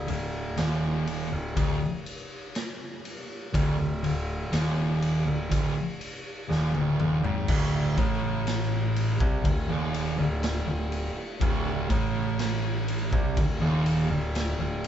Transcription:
0.07 0.55 D1 medium
0.07 0.48 D2 medium
0.07 ride medium
0.57 1.28 D#1 medium
0.57 1.30 D#2 loud
0.57 snare loud
0.57 ride medium
1.07 ride medium
1.31 1.55 D1 medium
1.31 1.54 D2 medium
1.56 1.80 D1 loud
1.56 1.79 D2 loud
1.56 kick loud
1.56 ride medium
2.06 ride medium
2.55 snare loud
2.55 ride medium
3.05 ride medium
3.53 3.77 D1 loud
3.53 3.77 D2 medium
3.53 kick loud
3.53 ride medium
3.78 4.02 D1 medium
3.78 4.02 D2 medium
4.03 4.49 D1 medium
4.03 4.43 D2 medium
4.03 ride medium
4.52 5.23 D#1 medium
4.52 5.25 D#2 loud
4.52 snare loud
4.52 ride loud
5.02 ride medium
5.26 5.49 D1 medium
5.26 5.49 D2 medium
5.50 5.74 D1 medium
5.50 5.74 D2 loud
5.50 kick loud
5.50 ride loud
6.01 ride medium
6.48 6.72 D#1 loud
6.48 6.72 D#2 loud
6.48 snare medium
6.73 6.97 D1 medium
6.73 6.97 D2 medium
6.73 high tom medium
6.98 7.22 D#1 medium
6.98 7.22 D#2 medium
6.98 mid tom medium
7.22 7.46 G#1 medium
7.22 7.46 G#2 medium
7.22 floor tom medium
7.47 7.94 D1 loud
7.47 7.95 D2 loud
7.47 kick loud
7.47 crash loud
7.97 9.16 A1 loud
7.97 9.18 A2 loud
7.97 kick loud
7.97 ride medium
8.47 snare loud
8.47 ride loud
8.96 ride medium
9.19 9.43 C2 loud
9.19 9.43 C3 loud
9.19 kick loud
9.44 9.68 D1 medium
9.44 9.67 D2 medium
9.44 kick loud
9.44 ride loud
9.68 10.15 D#1 medium
9.68 10.16 D#2 loud
9.94 ride medium
10.17 10.64 D1 medium
10.17 10.57 D2 medium
10.43 snare loud
10.43 ride loud
10.66 11.13 D1 medium
10.66 11.06 D2 medium
10.92 ride medium
11.40 11.87 D1 loud
11.40 11.88 D2 loud
11.40 kick loud
11.40 ride loud
11.89 13.09 A1 loud
11.89 13.11 A2 loud
11.89 kick loud
11.89 ride medium
12.39 snare loud
12.39 ride loud
12.88 ride medium
13.11 13.35 C2 loud
13.11 13.35 C3 loud
13.11 kick loud
13.37 13.60 D1 medium
13.37 13.60 D2 medium
13.37 kick loud
13.37 ride loud
13.60 14.07 D#1 loud
13.60 14.08 D#2 loud
13.86 ride medium
14.10 14.56 D1 medium
14.10 14.50 D2 medium
14.35 snare loud
14.35 ride loud
14.59 14.88 D1 medium
14.59 14.88 D2 medium
14.84 ride medium

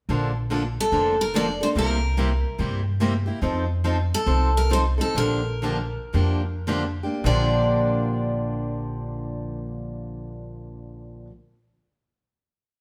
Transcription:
0.09 0.76 A#1 medium
0.09 0.30 D3 medium
0.09 0.30 F3 medium
0.09 0.30 A#3 medium
0.09 0.31 D4 medium
0.09 0.31 A4 medium
0.50 0.61 D3 medium
0.50 0.62 F3 medium
0.50 0.62 A#3 medium
0.50 0.62 D4 medium
0.50 0.62 A4 medium
0.80 1.18 A4 medium
0.92 1.59 F1 medium
0.92 1.13 D3 medium
0.92 1.14 F3 medium
0.92 1.14 A#3 medium
0.92 1.14 D4 medium
0.92 1.14 A4 medium
1.21 1.36 A#4 medium
1.34 1.45 D3 medium
1.34 1.46 F3 medium
1.34 1.46 A#3 medium
1.34 1.46 D4 medium
1.34 1.46 A4 medium
1.34 1.62 D5 medium
1.61 1.75 A#3 soft
1.61 1.76 D4 soft
1.61 1.75 A4 soft
1.61 1.68 C5 medium
1.76 2.42 C2 medium
1.76 1.97 C3 medium
1.76 1.97 G3 medium
1.76 1.97 A#3 medium
1.76 1.98 E4 medium
1.76 1.98 G4 medium
1.76 2.57 A#4 medium
2.17 2.29 C3 medium
2.17 2.29 G3 medium
2.17 2.29 A#3 medium
2.17 2.29 E4 medium
2.17 2.29 G4 medium
2.59 3.26 G2 medium
2.59 2.80 C3 medium
2.59 2.80 G3 medium
2.59 2.81 A#3 medium
2.59 2.81 E4 medium
2.59 2.81 G4 medium
3.00 3.12 C3 medium
3.00 3.12 G3 medium
3.00 3.12 A#3 medium
3.00 3.12 E4 medium
3.00 3.13 G4 medium
3.26 3.42 A#3 soft
3.26 3.42 E4 soft
3.26 3.42 G4 soft
3.41 4.10 F2 medium
3.41 3.63 F3 medium
3.41 3.63 C4 medium
3.41 3.64 D#4 medium
3.41 3.64 A4 medium
3.84 3.96 F3 medium
3.84 3.96 C4 medium
3.84 3.96 D#4 medium
3.84 3.96 A4 medium
4.14 4.53 A4 medium
4.26 4.98 C2 medium
4.26 4.49 F3 medium
4.26 4.49 C4 medium
4.26 4.49 D#4 medium
4.26 4.49 A4 medium
4.57 4.71 A#4 medium
4.70 4.83 F3 medium
4.70 4.83 C4 medium
4.70 4.83 D#4 medium
4.70 4.84 A4 medium
4.70 4.80 C5 medium
4.98 5.15 C4 soft
4.98 5.16 D#4 soft
4.98 5.15 A4 soft
4.98 5.17 A4 medium
5.15 5.93 A#1 medium
5.15 5.40 D3 medium
5.15 5.40 F3 medium
5.15 5.40 A#3 medium
5.15 5.40 D4 medium
5.15 5.40 G4 medium
5.15 6.99 A#4 medium
5.62 5.76 D3 medium
5.62 5.76 F3 medium
5.62 5.77 A#3 medium
5.62 5.77 D4 medium
5.62 5.77 G4 medium
6.14 7.02 F2 medium
6.14 6.40 D3 medium
6.14 6.40 F3 soft
6.14 6.41 A#3 medium
6.14 6.41 D4 medium
6.14 6.41 G4 medium
6.67 6.82 D3 medium
6.67 6.82 F3 medium
6.67 6.82 A#3 medium
6.67 6.83 D4 medium
6.67 6.83 G4 medium
7.03 7.25 A#3 soft
7.03 7.25 D4 soft
7.03 7.24 G4 soft
7.24 11.24 A#1 medium
7.24 11.28 A#2 medium
7.24 11.30 D3 medium
7.24 11.30 F3 medium
7.24 11.31 A#3 medium
7.24 11.32 D4 medium
7.24 11.32 G4 medium
7.24 11.27 D5 medium

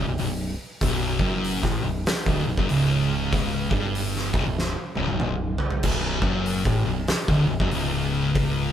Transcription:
0.07 0.18 B0 medium
0.07 0.19 B1 medium
0.18 0.55 B0 medium
0.18 0.50 B1 medium
0.18 open hi-hat medium
0.81 1.17 B0 medium
0.81 1.19 B1 loud
0.81 kick loud
0.81 open hi-hat medium
1.19 1.60 F#1 loud
1.19 1.63 F#2 loud
1.19 kick loud
1.44 open hi-hat medium
1.63 1.81 A1 medium
1.63 1.81 A2 loud
1.63 kick loud
1.63 snare soft
1.83 2.06 B0 medium
1.83 2.03 B1 medium
2.06 snare loud
2.06 open hi-hat medium
2.26 2.44 D1 medium
2.26 2.45 D2 loud
2.26 kick loud
2.45 2.57 B0 medium
2.45 2.59 B1 medium
2.58 2.69 F#1 loud
2.58 2.70 F#2 loud
2.58 kick loud
2.69 3.67 C#1 medium
2.69 3.71 C#2 loud
2.69 open hi-hat medium
3.33 kick loud
3.33 open hi-hat medium
3.71 4.30 G1 loud
3.71 4.32 G2 loud
3.71 kick loud
3.95 open hi-hat medium
4.16 snare soft
4.34 4.45 B0 loud
4.34 4.45 B1 loud
4.34 kick loud
4.46 4.76 B0 medium
4.46 4.70 B1 medium
4.59 snare medium
4.95 5.08 C#1 medium
4.95 5.08 C#2 medium
4.95 high tom medium
5.08 5.20 B0 medium
5.08 5.22 B1 medium
5.08 high tom medium
5.20 5.57 B0 medium
5.20 5.53 B1 medium
5.20 mid tom medium
5.58 floor tom loud
5.71 floor tom loud
5.83 6.19 B0 loud
5.83 6.21 B1 loud
5.83 kick loud
5.83 crash loud
6.22 6.63 F#1 loud
6.22 6.65 F#2 loud
6.22 kick loud
6.46 open hi-hat medium
6.65 6.84 A1 medium
6.65 6.84 A2 loud
6.65 kick loud
6.85 7.09 B0 medium
6.85 7.05 B1 medium
7.08 snare loud
7.08 open hi-hat medium
7.28 7.47 D1 medium
7.28 7.47 D2 loud
7.28 kick loud
7.47 7.59 B0 medium
7.47 7.60 B1 medium
7.60 7.72 F#1 loud
7.60 7.71 F#2 loud
7.60 kick loud
7.71 8.71 C#1 medium
7.71 8.72 C#2 loud
7.71 open hi-hat medium
8.35 kick loud
8.35 open hi-hat medium

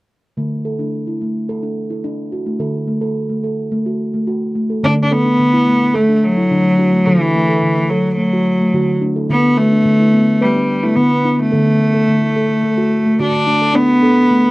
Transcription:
0.37 2.56 D3 medium
0.37 0.65 A3 medium
0.65 0.79 A4 soft
0.79 1.07 D4 medium
1.07 1.21 E4 soft
1.21 1.49 A3 soft
1.49 1.63 A4 medium
1.63 1.91 D4 soft
1.90 2.04 E4 soft
2.04 2.32 D4 medium
2.32 2.46 F#4 soft
2.46 2.60 A3 soft
2.59 4.79 D3 medium
2.59 2.88 A4 medium
2.88 3.02 A3 soft
3.01 3.30 A4 medium
3.29 3.44 A3 soft
3.44 3.72 A4 soft
3.72 3.86 A3 medium
3.86 4.14 F#4 soft
4.14 4.28 A3 soft
4.27 4.56 F#4 medium
4.55 4.70 A3 soft
4.70 4.84 A4 soft
4.83 5.30 D3 medium
4.83 5.12 A3 medium
4.83 4.94 D4 medium
5.04 5.14 D4 medium
5.11 5.96 B3 medium
5.11 5.25 A4 medium
5.25 5.53 D4 medium
5.39 5.86 D3 medium
5.53 5.67 E4 medium
5.67 5.94 A3 medium
5.94 6.16 A3 medium
5.94 6.42 A3 medium
5.94 6.09 A4 medium
6.09 6.37 D4 medium
6.16 6.25 A3 medium
6.24 7.07 F#3 medium
6.37 6.51 E4 medium
6.51 6.74 D3 medium
6.51 6.77 D4 medium
6.78 7.02 D4 medium
6.78 6.93 F#4 medium
6.93 7.07 A3 medium
7.05 7.54 D3 medium
7.05 7.91 E3 medium
7.05 7.35 A4 medium
7.35 7.49 A3 medium
7.49 7.77 A4 medium
7.62 8.09 D3 medium
7.77 7.90 A3 soft
7.90 8.16 F#3 medium
7.90 8.19 A4 medium
8.17 8.97 F#3 medium
8.17 8.60 A3 medium
8.33 8.61 F#4 medium
8.61 8.74 A3 medium
8.74 8.97 D3 medium
8.74 9.02 F#4 medium
9.02 9.16 A3 medium
9.02 9.25 D4 medium
9.16 9.30 A4 medium
9.29 9.76 D3 medium
9.29 9.58 B3 medium
9.29 9.59 B3 medium
9.57 10.43 A3 medium
9.57 9.72 B4 medium
9.72 9.99 D4 medium
9.85 10.32 D3 medium
10.00 10.13 E4 soft
10.14 10.40 B3 medium
10.41 10.85 G3 medium
10.41 10.88 B3 medium
10.41 10.55 B4 medium
10.56 10.83 D4 medium
10.83 10.98 A3 medium
10.83 10.97 E4 medium
10.96 11.20 D3 medium
10.96 11.41 B3 medium
10.96 11.25 B3 medium
11.24 11.48 D4 medium
11.24 11.38 E4 medium
11.38 13.19 A3 medium
11.38 11.52 B3 medium
11.52 11.99 D3 medium
11.52 11.80 A4 medium
11.80 11.94 A3 medium
11.94 12.22 A4 medium
12.08 12.55 D3 medium
12.21 12.35 A3 medium
12.36 12.64 A4 medium
12.63 13.05 A3 medium
12.78 13.05 F#4 medium
13.06 13.19 A3 medium
13.19 13.42 D3 medium
13.19 13.77 D4 medium
13.19 13.47 F#4 medium
13.47 13.61 A3 medium
13.47 13.70 D4 medium
13.62 13.75 A4 medium
13.74 14.51 B3 loud
13.74 13.97 D4 medium
14.02 14.51 D4 medium
14.02 14.30 A4 medium
14.31 14.51 A3 medium

